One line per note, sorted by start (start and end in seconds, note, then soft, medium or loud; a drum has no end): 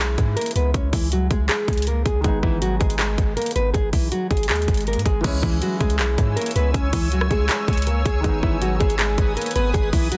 0.00 0.17 B1 loud
0.00 2.19 E3 medium
0.00 2.20 G#3 medium
0.00 0.35 G#3 medium
0.00 2.21 C#4 medium
0.00 2.22 E4 medium
0.00 0.35 G#4 medium
0.18 0.36 G#2 loud
0.18 kick loud
0.18 closed hi-hat medium
0.36 0.52 A#3 medium
0.36 0.51 A#4 medium
0.36 closed hi-hat medium
0.41 closed hi-hat medium
0.46 closed hi-hat medium
0.51 closed hi-hat medium
0.55 0.74 C#2 loud
0.55 0.71 B3 medium
0.55 0.70 B4 medium
0.55 closed hi-hat medium
0.74 0.92 C#2 loud
0.74 0.89 C#4 medium
0.74 0.89 C#5 medium
0.74 kick loud
0.74 closed hi-hat medium
0.93 1.29 C#2 loud
0.93 1.08 E3 medium
0.93 1.07 E4 medium
0.93 kick loud
0.93 open hi-hat medium
1.12 1.27 F#3 medium
1.12 1.27 F#4 medium
1.12 closed hi-hat medium
1.31 1.49 C#2 loud
1.31 1.46 G#3 medium
1.31 1.45 G#4 medium
1.31 kick medium
1.31 closed hi-hat medium
1.49 1.85 G#3 medium
1.49 1.84 G#4 medium
1.49 clap loud
1.49 closed hi-hat medium
1.68 2.04 C#2 loud
1.68 kick loud
1.68 closed hi-hat soft
1.73 closed hi-hat medium
1.78 closed hi-hat medium
1.82 closed hi-hat medium
1.87 2.02 A#3 medium
1.87 2.02 A#4 medium
1.87 closed hi-hat medium
2.06 2.24 C#2 loud
2.06 2.21 G#3 medium
2.06 2.20 G#4 medium
2.06 kick loud
2.06 closed hi-hat medium
2.21 2.42 G#1 loud
2.21 5.19 D#3 medium
2.21 5.20 G#3 medium
2.21 2.39 G#3 medium
2.21 2.39 G#4 medium
2.21 kick loud
2.21 closed hi-hat medium
2.25 5.21 B3 medium
2.25 5.22 D#4 medium
2.43 2.79 G#1 loud
2.43 2.58 E3 medium
2.43 2.57 E4 medium
2.43 kick loud
2.62 2.77 F#3 medium
2.62 2.76 F#4 medium
2.62 closed hi-hat medium
2.80 3.17 G#1 loud
2.80 2.95 G#3 medium
2.80 2.95 G#4 medium
2.80 kick loud
2.80 closed hi-hat soft
2.90 closed hi-hat medium
2.99 3.35 G#3 medium
2.99 3.34 G#4 medium
2.99 clap loud
2.99 closed hi-hat medium
3.18 3.36 G#1 loud
3.18 kick loud
3.18 closed hi-hat medium
3.37 3.52 A#3 medium
3.37 3.51 A#4 medium
3.37 closed hi-hat medium
3.42 closed hi-hat medium
3.46 closed hi-hat medium
3.51 closed hi-hat medium
3.56 3.74 G#1 loud
3.56 3.71 B3 medium
3.56 3.70 B4 medium
3.56 closed hi-hat medium
3.74 3.92 G#1 loud
3.74 3.89 G#3 medium
3.74 3.88 G#4 loud
3.74 kick loud
3.74 closed hi-hat medium
3.74 swell medium
3.93 4.11 B1 loud
3.93 4.08 E3 medium
3.93 4.08 E4 medium
3.93 kick loud
3.93 open hi-hat medium
4.12 4.27 F#3 medium
4.12 4.26 F#4 medium
4.12 closed hi-hat medium
4.31 4.51 G#1 loud
4.31 4.46 G#3 medium
4.31 4.45 G#4 medium
4.31 kick medium
4.31 closed hi-hat soft
4.37 closed hi-hat medium
4.43 closed hi-hat medium
4.49 4.67 D#2 loud
4.49 4.85 G#3 medium
4.49 4.85 G#4 medium
4.49 clap loud
4.49 closed hi-hat medium
4.56 closed hi-hat medium
4.62 closed hi-hat medium
4.68 4.98 G#1 loud
4.68 kick loud
4.68 closed hi-hat medium
4.74 closed hi-hat medium
4.77 closed hi-hat medium
4.81 closed hi-hat soft
4.87 5.02 A#3 medium
4.87 5.02 A#4 medium
4.87 closed hi-hat soft
4.93 5.05 G#2 loud
4.93 closed hi-hat medium
4.99 closed hi-hat medium
5.05 5.24 G#1 loud
5.05 5.20 G#3 medium
5.05 5.20 G#4 medium
5.05 kick loud
5.05 closed hi-hat medium
5.21 5.42 C#2 loud
5.21 8.19 E3 medium
5.21 8.20 G#3 medium
5.21 5.39 C#4 medium
5.21 8.21 C#5 medium
5.21 8.21 G#5 medium
5.21 8.21 E6 medium
5.21 kick loud
5.21 closed hi-hat medium
5.21 crash loud
5.25 8.21 C#4 medium
5.25 8.22 E4 medium
5.25 5.39 C#5 medium
5.42 5.61 C#2 loud
5.42 5.58 E3 medium
5.42 5.57 E4 medium
5.42 kick loud
5.62 5.77 F#3 medium
5.62 5.77 F#4 medium
5.62 closed hi-hat medium
5.80 6.01 C#2 loud
5.80 5.95 G#3 medium
5.80 5.95 G#4 medium
5.80 kick loud
5.80 closed hi-hat soft
5.90 closed hi-hat medium
5.99 6.17 B1 loud
5.99 6.35 G#3 medium
5.99 6.35 G#4 medium
5.99 clap loud
5.99 closed hi-hat medium
6.18 6.36 G#2 loud
6.18 kick loud
6.18 closed hi-hat medium
6.36 6.52 A#3 medium
6.36 6.51 A#4 medium
6.36 closed hi-hat medium
6.41 closed hi-hat medium
6.46 closed hi-hat medium
6.51 closed hi-hat medium
6.56 6.74 C#2 loud
6.56 6.71 B3 medium
6.56 6.70 B4 medium
6.56 closed hi-hat medium
6.74 6.92 C#2 loud
6.74 6.89 C#4 loud
6.74 6.89 C#5 medium
6.74 kick loud
6.74 closed hi-hat medium
6.93 7.29 C#2 loud
6.93 7.08 E3 medium
6.93 7.07 E4 medium
6.93 kick loud
6.93 open hi-hat medium
7.12 7.27 F#3 medium
7.12 7.27 F#4 medium
7.12 closed hi-hat medium
7.21 cross-stick loud
7.31 7.49 C#2 loud
7.31 7.46 G#3 medium
7.31 7.45 G#4 medium
7.31 kick loud
7.31 closed hi-hat medium
7.49 7.85 G#3 medium
7.49 7.84 G#4 medium
7.49 clap loud
7.49 closed hi-hat medium
7.68 8.04 C#2 loud
7.68 kick loud
7.68 closed hi-hat soft
7.73 closed hi-hat medium
7.77 closed hi-hat medium
7.82 closed hi-hat medium
7.87 8.02 A#3 medium
7.87 8.01 A#4 medium
7.87 closed hi-hat medium
8.06 8.24 C#2 loud
8.06 8.21 G#3 medium
8.06 8.20 G#4 medium
8.06 kick loud
8.06 closed hi-hat medium
8.21 8.42 G#1 loud
8.21 10.17 D#3 medium
8.21 10.17 G#3 medium
8.21 8.39 G#3 medium
8.21 8.39 G#4 medium
8.21 10.17 B4 medium
8.21 10.17 G#5 medium
8.21 10.17 D#6 medium
8.21 kick loud
8.21 closed hi-hat medium
8.25 10.17 B3 medium
8.25 10.17 D#4 medium
8.43 8.79 G#1 loud
8.43 8.58 E3 medium
8.43 8.57 E4 medium
8.43 kick loud
8.62 8.77 F#3 medium
8.62 8.76 F#4 medium
8.62 closed hi-hat medium
8.80 9.17 G#1 loud
8.80 8.95 G#3 medium
8.80 8.95 G#4 medium
8.80 kick medium
8.80 closed hi-hat soft
8.90 closed hi-hat medium
8.99 9.35 G#3 medium
8.99 9.34 G#4 medium
8.99 clap loud
8.99 closed hi-hat medium
9.18 9.36 G#1 loud
9.18 kick loud
9.18 closed hi-hat medium
9.37 9.52 A#3 medium
9.37 9.51 A#4 medium
9.37 closed hi-hat medium
9.41 closed hi-hat medium
9.46 closed hi-hat medium
9.51 closed hi-hat medium
9.56 9.74 G#1 loud
9.56 9.71 B3 medium
9.56 9.70 B4 medium
9.56 closed hi-hat medium
9.74 9.92 G#1 loud
9.74 9.89 G#3 medium
9.74 9.88 G#4 loud
9.74 kick loud
9.74 closed hi-hat medium
9.93 10.11 B1 loud
9.93 10.08 E3 medium
9.93 10.08 E4 medium
9.93 kick loud
9.93 open hi-hat medium
10.12 10.17 F#3 medium
10.12 10.17 F#4 medium
10.12 closed hi-hat medium